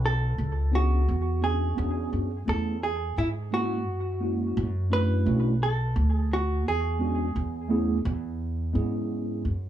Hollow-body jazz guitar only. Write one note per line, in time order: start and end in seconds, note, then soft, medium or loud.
0.06 0.76 A4 medium
0.75 1.46 F#4 medium
1.44 2.09 G#4 medium
2.49 2.83 A4 medium
2.83 3.15 G#4 medium
3.18 3.28 E4 medium
3.54 4.96 F#4 loud
4.93 5.63 B4 loud
5.63 6.13 A4 medium
6.13 6.34 G#4 medium
6.33 6.65 F#4 medium
6.68 9.69 G#4 medium